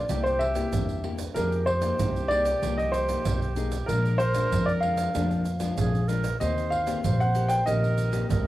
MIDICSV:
0, 0, Header, 1, 7, 480
1, 0, Start_track
1, 0, Tempo, 630915
1, 1033, Time_signature, 4, 2, 24, 8
1, 6444, End_track
2, 0, Start_track
2, 0, Title_t, "Grand piano"
2, 0, Program_c, 0, 0
2, 0, Note_on_c, 0, 74, 83
2, 179, Note_on_c, 0, 72, 75
2, 191, Note_off_c, 0, 74, 0
2, 297, Note_on_c, 0, 76, 88
2, 309, Note_off_c, 0, 72, 0
2, 755, Note_off_c, 0, 76, 0
2, 1023, Note_on_c, 0, 70, 72
2, 1251, Note_off_c, 0, 70, 0
2, 1262, Note_on_c, 0, 72, 80
2, 1737, Note_on_c, 0, 74, 99
2, 1763, Note_off_c, 0, 72, 0
2, 2112, Note_on_c, 0, 75, 86
2, 2117, Note_off_c, 0, 74, 0
2, 2219, Note_on_c, 0, 72, 80
2, 2237, Note_off_c, 0, 75, 0
2, 2677, Note_off_c, 0, 72, 0
2, 2939, Note_on_c, 0, 70, 76
2, 3170, Note_off_c, 0, 70, 0
2, 3180, Note_on_c, 0, 72, 96
2, 3522, Note_off_c, 0, 72, 0
2, 3543, Note_on_c, 0, 74, 79
2, 3581, Note_off_c, 0, 74, 0
2, 3655, Note_on_c, 0, 77, 78
2, 4594, Note_off_c, 0, 77, 0
2, 4870, Note_on_c, 0, 75, 70
2, 5095, Note_off_c, 0, 75, 0
2, 5101, Note_on_c, 0, 77, 89
2, 5441, Note_off_c, 0, 77, 0
2, 5480, Note_on_c, 0, 78, 78
2, 5694, Note_on_c, 0, 79, 79
2, 5724, Note_off_c, 0, 78, 0
2, 5814, Note_off_c, 0, 79, 0
2, 5825, Note_on_c, 0, 75, 78
2, 6444, Note_off_c, 0, 75, 0
2, 6444, End_track
3, 0, Start_track
3, 0, Title_t, "Flute"
3, 0, Program_c, 1, 73
3, 68, Note_on_c, 1, 67, 84
3, 796, Note_off_c, 1, 67, 0
3, 1030, Note_on_c, 1, 67, 95
3, 2954, Note_on_c, 1, 70, 105
3, 2966, Note_off_c, 1, 67, 0
3, 4189, Note_off_c, 1, 70, 0
3, 4396, Note_on_c, 1, 68, 85
3, 4624, Note_on_c, 1, 70, 90
3, 4636, Note_off_c, 1, 68, 0
3, 4869, Note_off_c, 1, 70, 0
3, 4876, Note_on_c, 1, 72, 93
3, 5324, Note_off_c, 1, 72, 0
3, 5352, Note_on_c, 1, 72, 91
3, 5776, Note_off_c, 1, 72, 0
3, 5776, Note_on_c, 1, 72, 60
3, 5840, Note_on_c, 1, 70, 88
3, 5851, Note_off_c, 1, 72, 0
3, 6309, Note_off_c, 1, 70, 0
3, 6314, Note_on_c, 1, 70, 91
3, 6444, Note_off_c, 1, 70, 0
3, 6444, End_track
4, 0, Start_track
4, 0, Title_t, "Nylon-string guitar"
4, 0, Program_c, 2, 24
4, 69, Note_on_c, 2, 48, 52
4, 70, Note_on_c, 2, 58, 54
4, 72, Note_on_c, 2, 64, 52
4, 76, Note_on_c, 2, 67, 57
4, 295, Note_off_c, 2, 58, 0
4, 297, Note_off_c, 2, 64, 0
4, 299, Note_off_c, 2, 67, 0
4, 416, Note_on_c, 2, 58, 52
4, 421, Note_on_c, 2, 64, 55
4, 427, Note_on_c, 2, 67, 63
4, 527, Note_off_c, 2, 48, 0
4, 552, Note_on_c, 2, 43, 48
4, 746, Note_off_c, 2, 58, 0
4, 749, Note_off_c, 2, 64, 0
4, 750, Note_off_c, 2, 67, 0
4, 786, Note_on_c, 2, 58, 52
4, 789, Note_on_c, 2, 64, 52
4, 793, Note_on_c, 2, 67, 63
4, 931, Note_off_c, 2, 58, 0
4, 932, Note_off_c, 2, 64, 0
4, 934, Note_off_c, 2, 67, 0
4, 1009, Note_off_c, 2, 43, 0
4, 1028, Note_on_c, 2, 53, 53
4, 1031, Note_on_c, 2, 58, 49
4, 1032, Note_on_c, 2, 63, 55
4, 1038, Note_on_c, 2, 68, 55
4, 1257, Note_off_c, 2, 58, 0
4, 1259, Note_off_c, 2, 63, 0
4, 1260, Note_off_c, 2, 68, 0
4, 1376, Note_on_c, 2, 58, 59
4, 1379, Note_on_c, 2, 63, 57
4, 1488, Note_off_c, 2, 53, 0
4, 1516, Note_on_c, 2, 48, 50
4, 1707, Note_off_c, 2, 58, 0
4, 1709, Note_off_c, 2, 63, 0
4, 1746, Note_on_c, 2, 58, 47
4, 1751, Note_on_c, 2, 63, 54
4, 1754, Note_on_c, 2, 68, 58
4, 1891, Note_off_c, 2, 58, 0
4, 1894, Note_off_c, 2, 63, 0
4, 1895, Note_off_c, 2, 68, 0
4, 1972, Note_off_c, 2, 48, 0
4, 1997, Note_on_c, 2, 53, 50
4, 1999, Note_on_c, 2, 58, 49
4, 2002, Note_on_c, 2, 63, 50
4, 2318, Note_off_c, 2, 58, 0
4, 2320, Note_off_c, 2, 63, 0
4, 2348, Note_on_c, 2, 58, 56
4, 2353, Note_on_c, 2, 63, 55
4, 2453, Note_off_c, 2, 53, 0
4, 2674, Note_off_c, 2, 58, 0
4, 2675, Note_off_c, 2, 63, 0
4, 2712, Note_on_c, 2, 58, 51
4, 2713, Note_on_c, 2, 63, 57
4, 2717, Note_on_c, 2, 68, 59
4, 2855, Note_off_c, 2, 58, 0
4, 2855, Note_off_c, 2, 63, 0
4, 2857, Note_off_c, 2, 68, 0
4, 2956, Note_on_c, 2, 46, 52
4, 2959, Note_on_c, 2, 53, 57
4, 2962, Note_on_c, 2, 62, 61
4, 2964, Note_on_c, 2, 56, 57
4, 3182, Note_off_c, 2, 53, 0
4, 3183, Note_off_c, 2, 56, 0
4, 3184, Note_off_c, 2, 62, 0
4, 3302, Note_on_c, 2, 53, 55
4, 3306, Note_on_c, 2, 56, 54
4, 3309, Note_on_c, 2, 62, 60
4, 3413, Note_off_c, 2, 46, 0
4, 3433, Note_on_c, 2, 41, 50
4, 3630, Note_off_c, 2, 53, 0
4, 3632, Note_off_c, 2, 56, 0
4, 3634, Note_off_c, 2, 62, 0
4, 3672, Note_on_c, 2, 53, 48
4, 3674, Note_on_c, 2, 56, 43
4, 3676, Note_on_c, 2, 62, 55
4, 3875, Note_off_c, 2, 53, 0
4, 3876, Note_off_c, 2, 56, 0
4, 3877, Note_off_c, 2, 62, 0
4, 3890, Note_off_c, 2, 41, 0
4, 3916, Note_on_c, 2, 46, 49
4, 3917, Note_on_c, 2, 53, 52
4, 3921, Note_on_c, 2, 56, 47
4, 3921, Note_on_c, 2, 62, 59
4, 4141, Note_off_c, 2, 53, 0
4, 4142, Note_off_c, 2, 56, 0
4, 4143, Note_off_c, 2, 62, 0
4, 4262, Note_on_c, 2, 53, 56
4, 4265, Note_on_c, 2, 56, 52
4, 4269, Note_on_c, 2, 62, 59
4, 4372, Note_off_c, 2, 46, 0
4, 4398, Note_on_c, 2, 41, 47
4, 4590, Note_off_c, 2, 53, 0
4, 4592, Note_off_c, 2, 56, 0
4, 4593, Note_off_c, 2, 62, 0
4, 4629, Note_on_c, 2, 53, 55
4, 4633, Note_on_c, 2, 56, 53
4, 4637, Note_on_c, 2, 62, 59
4, 4773, Note_off_c, 2, 53, 0
4, 4775, Note_off_c, 2, 56, 0
4, 4777, Note_off_c, 2, 62, 0
4, 4852, Note_off_c, 2, 41, 0
4, 4869, Note_on_c, 2, 58, 55
4, 4871, Note_on_c, 2, 51, 54
4, 4875, Note_on_c, 2, 60, 53
4, 4876, Note_on_c, 2, 67, 58
4, 5193, Note_off_c, 2, 58, 0
4, 5195, Note_off_c, 2, 60, 0
4, 5196, Note_off_c, 2, 67, 0
4, 5221, Note_on_c, 2, 58, 54
4, 5223, Note_on_c, 2, 60, 55
4, 5228, Note_on_c, 2, 67, 65
4, 5329, Note_off_c, 2, 51, 0
4, 5353, Note_on_c, 2, 46, 49
4, 5549, Note_off_c, 2, 58, 0
4, 5549, Note_off_c, 2, 60, 0
4, 5552, Note_off_c, 2, 67, 0
4, 5590, Note_on_c, 2, 58, 47
4, 5593, Note_on_c, 2, 60, 50
4, 5596, Note_on_c, 2, 67, 57
4, 5793, Note_off_c, 2, 58, 0
4, 5794, Note_off_c, 2, 60, 0
4, 5796, Note_off_c, 2, 67, 0
4, 5809, Note_off_c, 2, 46, 0
4, 5828, Note_on_c, 2, 51, 53
4, 5831, Note_on_c, 2, 58, 48
4, 5834, Note_on_c, 2, 60, 48
4, 5838, Note_on_c, 2, 67, 60
4, 6153, Note_off_c, 2, 58, 0
4, 6155, Note_off_c, 2, 60, 0
4, 6156, Note_off_c, 2, 67, 0
4, 6175, Note_on_c, 2, 58, 50
4, 6179, Note_on_c, 2, 60, 50
4, 6181, Note_on_c, 2, 67, 58
4, 6286, Note_off_c, 2, 51, 0
4, 6307, Note_on_c, 2, 46, 46
4, 6444, Note_off_c, 2, 46, 0
4, 6444, Note_off_c, 2, 58, 0
4, 6444, Note_off_c, 2, 60, 0
4, 6444, Note_off_c, 2, 67, 0
4, 6444, End_track
5, 0, Start_track
5, 0, Title_t, "Upright bass"
5, 0, Program_c, 3, 32
5, 75, Note_on_c, 3, 36, 79
5, 482, Note_off_c, 3, 36, 0
5, 555, Note_on_c, 3, 40, 79
5, 963, Note_off_c, 3, 40, 0
5, 1036, Note_on_c, 3, 41, 86
5, 1444, Note_off_c, 3, 41, 0
5, 1519, Note_on_c, 3, 36, 89
5, 1925, Note_off_c, 3, 36, 0
5, 1995, Note_on_c, 3, 36, 80
5, 2403, Note_off_c, 3, 36, 0
5, 2480, Note_on_c, 3, 35, 77
5, 2886, Note_off_c, 3, 35, 0
5, 2954, Note_on_c, 3, 34, 83
5, 3362, Note_off_c, 3, 34, 0
5, 3434, Note_on_c, 3, 41, 82
5, 3843, Note_off_c, 3, 41, 0
5, 3920, Note_on_c, 3, 41, 77
5, 4326, Note_off_c, 3, 41, 0
5, 4399, Note_on_c, 3, 34, 71
5, 4805, Note_off_c, 3, 34, 0
5, 4881, Note_on_c, 3, 39, 82
5, 5286, Note_off_c, 3, 39, 0
5, 5359, Note_on_c, 3, 34, 84
5, 5765, Note_off_c, 3, 34, 0
5, 5839, Note_on_c, 3, 34, 77
5, 6244, Note_off_c, 3, 34, 0
5, 6311, Note_on_c, 3, 37, 79
5, 6444, Note_off_c, 3, 37, 0
5, 6444, End_track
6, 0, Start_track
6, 0, Title_t, "Pandeiro"
6, 70, Note_on_c, 9, 54, 74
6, 146, Note_off_c, 9, 54, 0
6, 200, Note_on_c, 9, 54, 28
6, 276, Note_off_c, 9, 54, 0
6, 309, Note_on_c, 9, 54, 52
6, 385, Note_off_c, 9, 54, 0
6, 421, Note_on_c, 9, 54, 60
6, 497, Note_off_c, 9, 54, 0
6, 552, Note_on_c, 9, 54, 71
6, 628, Note_off_c, 9, 54, 0
6, 677, Note_on_c, 9, 54, 31
6, 753, Note_off_c, 9, 54, 0
6, 790, Note_on_c, 9, 54, 52
6, 866, Note_off_c, 9, 54, 0
6, 902, Note_on_c, 9, 54, 59
6, 978, Note_off_c, 9, 54, 0
6, 1033, Note_on_c, 9, 54, 66
6, 1109, Note_off_c, 9, 54, 0
6, 1158, Note_on_c, 9, 54, 30
6, 1234, Note_off_c, 9, 54, 0
6, 1271, Note_on_c, 9, 54, 50
6, 1347, Note_off_c, 9, 54, 0
6, 1383, Note_on_c, 9, 54, 61
6, 1459, Note_off_c, 9, 54, 0
6, 1517, Note_on_c, 9, 54, 74
6, 1593, Note_off_c, 9, 54, 0
6, 1645, Note_on_c, 9, 54, 31
6, 1722, Note_off_c, 9, 54, 0
6, 1756, Note_on_c, 9, 54, 49
6, 1832, Note_off_c, 9, 54, 0
6, 1867, Note_on_c, 9, 54, 63
6, 1943, Note_off_c, 9, 54, 0
6, 1999, Note_on_c, 9, 54, 73
6, 2075, Note_off_c, 9, 54, 0
6, 2126, Note_on_c, 9, 54, 31
6, 2202, Note_off_c, 9, 54, 0
6, 2235, Note_on_c, 9, 54, 51
6, 2311, Note_off_c, 9, 54, 0
6, 2349, Note_on_c, 9, 54, 55
6, 2425, Note_off_c, 9, 54, 0
6, 2475, Note_on_c, 9, 54, 79
6, 2551, Note_off_c, 9, 54, 0
6, 2604, Note_on_c, 9, 54, 30
6, 2680, Note_off_c, 9, 54, 0
6, 2711, Note_on_c, 9, 54, 50
6, 2787, Note_off_c, 9, 54, 0
6, 2827, Note_on_c, 9, 54, 57
6, 2904, Note_off_c, 9, 54, 0
6, 2959, Note_on_c, 9, 54, 66
6, 3035, Note_off_c, 9, 54, 0
6, 3085, Note_on_c, 9, 54, 31
6, 3161, Note_off_c, 9, 54, 0
6, 3192, Note_on_c, 9, 54, 49
6, 3268, Note_off_c, 9, 54, 0
6, 3305, Note_on_c, 9, 54, 63
6, 3381, Note_off_c, 9, 54, 0
6, 3441, Note_on_c, 9, 54, 71
6, 3517, Note_off_c, 9, 54, 0
6, 3564, Note_on_c, 9, 54, 31
6, 3641, Note_off_c, 9, 54, 0
6, 3671, Note_on_c, 9, 54, 54
6, 3747, Note_off_c, 9, 54, 0
6, 3784, Note_on_c, 9, 54, 60
6, 3860, Note_off_c, 9, 54, 0
6, 3917, Note_on_c, 9, 54, 78
6, 3993, Note_off_c, 9, 54, 0
6, 4038, Note_on_c, 9, 54, 30
6, 4114, Note_off_c, 9, 54, 0
6, 4148, Note_on_c, 9, 54, 47
6, 4224, Note_off_c, 9, 54, 0
6, 4259, Note_on_c, 9, 54, 57
6, 4335, Note_off_c, 9, 54, 0
6, 4394, Note_on_c, 9, 54, 76
6, 4470, Note_off_c, 9, 54, 0
6, 4526, Note_on_c, 9, 54, 29
6, 4602, Note_off_c, 9, 54, 0
6, 4632, Note_on_c, 9, 54, 50
6, 4708, Note_off_c, 9, 54, 0
6, 4747, Note_on_c, 9, 54, 59
6, 4823, Note_off_c, 9, 54, 0
6, 4876, Note_on_c, 9, 54, 69
6, 4952, Note_off_c, 9, 54, 0
6, 5005, Note_on_c, 9, 54, 31
6, 5081, Note_off_c, 9, 54, 0
6, 5112, Note_on_c, 9, 54, 52
6, 5189, Note_off_c, 9, 54, 0
6, 5227, Note_on_c, 9, 54, 59
6, 5303, Note_off_c, 9, 54, 0
6, 5358, Note_on_c, 9, 54, 71
6, 5434, Note_off_c, 9, 54, 0
6, 5484, Note_on_c, 9, 54, 32
6, 5561, Note_off_c, 9, 54, 0
6, 5590, Note_on_c, 9, 54, 51
6, 5666, Note_off_c, 9, 54, 0
6, 5702, Note_on_c, 9, 54, 60
6, 5778, Note_off_c, 9, 54, 0
6, 5836, Note_on_c, 9, 54, 73
6, 5912, Note_off_c, 9, 54, 0
6, 5964, Note_on_c, 9, 54, 31
6, 6041, Note_off_c, 9, 54, 0
6, 6069, Note_on_c, 9, 54, 50
6, 6145, Note_off_c, 9, 54, 0
6, 6184, Note_on_c, 9, 54, 56
6, 6260, Note_off_c, 9, 54, 0
6, 6317, Note_on_c, 9, 54, 74
6, 6393, Note_off_c, 9, 54, 0
6, 6444, End_track
7, 0, Start_track
7, 0, Title_t, "Drums"
7, 70, Note_on_c, 9, 82, 71
7, 70, Note_on_c, 9, 87, 52
7, 146, Note_off_c, 9, 82, 0
7, 146, Note_off_c, 9, 87, 0
7, 200, Note_on_c, 9, 82, 30
7, 200, Note_on_c, 9, 87, 29
7, 276, Note_off_c, 9, 82, 0
7, 276, Note_off_c, 9, 87, 0
7, 421, Note_on_c, 9, 82, 71
7, 421, Note_on_c, 9, 87, 29
7, 497, Note_off_c, 9, 82, 0
7, 497, Note_off_c, 9, 87, 0
7, 552, Note_on_c, 9, 82, 77
7, 552, Note_on_c, 9, 87, 93
7, 628, Note_off_c, 9, 82, 0
7, 628, Note_off_c, 9, 87, 0
7, 677, Note_on_c, 9, 82, 30
7, 753, Note_off_c, 9, 82, 0
7, 902, Note_on_c, 9, 82, 67
7, 902, Note_on_c, 9, 87, 30
7, 978, Note_off_c, 9, 82, 0
7, 978, Note_off_c, 9, 87, 0
7, 1033, Note_on_c, 9, 82, 66
7, 1033, Note_on_c, 9, 87, 47
7, 1109, Note_off_c, 9, 82, 0
7, 1109, Note_off_c, 9, 87, 0
7, 1158, Note_on_c, 9, 82, 30
7, 1234, Note_off_c, 9, 82, 0
7, 1271, Note_on_c, 9, 87, 28
7, 1347, Note_off_c, 9, 87, 0
7, 1383, Note_on_c, 9, 82, 72
7, 1383, Note_on_c, 9, 87, 28
7, 1459, Note_off_c, 9, 82, 0
7, 1459, Note_off_c, 9, 87, 0
7, 1517, Note_on_c, 9, 82, 77
7, 1517, Note_on_c, 9, 87, 90
7, 1593, Note_off_c, 9, 82, 0
7, 1593, Note_off_c, 9, 87, 0
7, 1645, Note_on_c, 9, 82, 30
7, 1722, Note_off_c, 9, 82, 0
7, 1867, Note_on_c, 9, 82, 80
7, 1943, Note_off_c, 9, 82, 0
7, 1999, Note_on_c, 9, 82, 72
7, 1999, Note_on_c, 9, 87, 54
7, 2075, Note_off_c, 9, 82, 0
7, 2075, Note_off_c, 9, 87, 0
7, 2126, Note_on_c, 9, 82, 31
7, 2126, Note_on_c, 9, 87, 29
7, 2202, Note_off_c, 9, 82, 0
7, 2202, Note_off_c, 9, 87, 0
7, 2235, Note_on_c, 9, 82, 61
7, 2311, Note_off_c, 9, 82, 0
7, 2349, Note_on_c, 9, 82, 70
7, 2349, Note_on_c, 9, 87, 28
7, 2425, Note_off_c, 9, 82, 0
7, 2425, Note_off_c, 9, 87, 0
7, 2475, Note_on_c, 9, 82, 77
7, 2475, Note_on_c, 9, 87, 92
7, 2551, Note_off_c, 9, 82, 0
7, 2551, Note_off_c, 9, 87, 0
7, 2604, Note_on_c, 9, 82, 33
7, 2680, Note_off_c, 9, 82, 0
7, 2711, Note_on_c, 9, 82, 62
7, 2787, Note_off_c, 9, 82, 0
7, 2827, Note_on_c, 9, 82, 71
7, 2827, Note_on_c, 9, 87, 31
7, 2904, Note_off_c, 9, 82, 0
7, 2904, Note_off_c, 9, 87, 0
7, 2959, Note_on_c, 9, 82, 69
7, 2959, Note_on_c, 9, 87, 51
7, 3035, Note_off_c, 9, 82, 0
7, 3035, Note_off_c, 9, 87, 0
7, 3085, Note_on_c, 9, 82, 32
7, 3161, Note_off_c, 9, 82, 0
7, 3192, Note_on_c, 9, 82, 62
7, 3192, Note_on_c, 9, 87, 28
7, 3268, Note_off_c, 9, 82, 0
7, 3268, Note_off_c, 9, 87, 0
7, 3305, Note_on_c, 9, 82, 66
7, 3305, Note_on_c, 9, 87, 30
7, 3381, Note_off_c, 9, 82, 0
7, 3381, Note_off_c, 9, 87, 0
7, 3441, Note_on_c, 9, 82, 70
7, 3441, Note_on_c, 9, 87, 89
7, 3517, Note_off_c, 9, 82, 0
7, 3517, Note_off_c, 9, 87, 0
7, 3564, Note_on_c, 9, 82, 30
7, 3641, Note_off_c, 9, 82, 0
7, 3784, Note_on_c, 9, 82, 76
7, 3860, Note_off_c, 9, 82, 0
7, 3917, Note_on_c, 9, 82, 68
7, 3917, Note_on_c, 9, 87, 50
7, 3993, Note_off_c, 9, 82, 0
7, 3993, Note_off_c, 9, 87, 0
7, 4038, Note_on_c, 9, 82, 32
7, 4038, Note_on_c, 9, 87, 31
7, 4114, Note_off_c, 9, 82, 0
7, 4114, Note_off_c, 9, 87, 0
7, 4148, Note_on_c, 9, 82, 61
7, 4224, Note_off_c, 9, 82, 0
7, 4259, Note_on_c, 9, 82, 68
7, 4259, Note_on_c, 9, 87, 28
7, 4335, Note_off_c, 9, 82, 0
7, 4335, Note_off_c, 9, 87, 0
7, 4394, Note_on_c, 9, 82, 76
7, 4394, Note_on_c, 9, 87, 94
7, 4470, Note_off_c, 9, 82, 0
7, 4470, Note_off_c, 9, 87, 0
7, 4526, Note_on_c, 9, 82, 31
7, 4602, Note_off_c, 9, 82, 0
7, 4632, Note_on_c, 9, 82, 63
7, 4708, Note_off_c, 9, 82, 0
7, 4747, Note_on_c, 9, 82, 72
7, 4747, Note_on_c, 9, 87, 29
7, 4823, Note_off_c, 9, 82, 0
7, 4823, Note_off_c, 9, 87, 0
7, 4876, Note_on_c, 9, 82, 69
7, 4876, Note_on_c, 9, 87, 46
7, 4952, Note_off_c, 9, 82, 0
7, 4952, Note_off_c, 9, 87, 0
7, 5005, Note_on_c, 9, 82, 33
7, 5081, Note_off_c, 9, 82, 0
7, 5112, Note_on_c, 9, 87, 29
7, 5189, Note_off_c, 9, 87, 0
7, 5227, Note_on_c, 9, 82, 69
7, 5227, Note_on_c, 9, 87, 31
7, 5303, Note_off_c, 9, 82, 0
7, 5303, Note_off_c, 9, 87, 0
7, 5358, Note_on_c, 9, 82, 74
7, 5358, Note_on_c, 9, 87, 93
7, 5434, Note_off_c, 9, 82, 0
7, 5434, Note_off_c, 9, 87, 0
7, 5484, Note_on_c, 9, 82, 30
7, 5561, Note_off_c, 9, 82, 0
7, 5590, Note_on_c, 9, 82, 63
7, 5666, Note_off_c, 9, 82, 0
7, 5702, Note_on_c, 9, 82, 79
7, 5778, Note_off_c, 9, 82, 0
7, 5836, Note_on_c, 9, 82, 72
7, 5836, Note_on_c, 9, 87, 55
7, 5912, Note_off_c, 9, 82, 0
7, 5912, Note_off_c, 9, 87, 0
7, 5964, Note_on_c, 9, 82, 32
7, 5964, Note_on_c, 9, 87, 31
7, 6041, Note_off_c, 9, 82, 0
7, 6041, Note_off_c, 9, 87, 0
7, 6069, Note_on_c, 9, 82, 60
7, 6145, Note_off_c, 9, 82, 0
7, 6184, Note_on_c, 9, 82, 73
7, 6184, Note_on_c, 9, 87, 30
7, 6260, Note_off_c, 9, 82, 0
7, 6260, Note_off_c, 9, 87, 0
7, 6317, Note_on_c, 9, 82, 77
7, 6317, Note_on_c, 9, 87, 99
7, 6393, Note_off_c, 9, 82, 0
7, 6393, Note_off_c, 9, 87, 0
7, 6444, End_track
0, 0, End_of_file